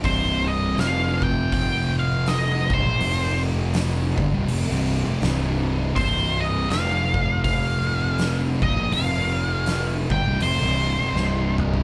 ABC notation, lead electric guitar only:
X:1
M:4/4
L:1/8
Q:"Swing" 1/4=81
K:Fm
V:1 name="Lead electric guitar"
c e f g g f e c- | c z6 z | c e f2 f3 e | f3 g c3 z |]